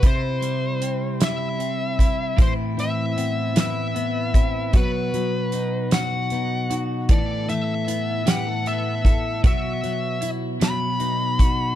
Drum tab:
HH |xxxxxx|xxxxxx|xxxxxx|xxxxxx|
SD |---o--|---o--|---o--|---o--|
BD |o----o|o----o|o-----|o----o|

HH |xxxxxx|
SD |---o--|
BD |o----o|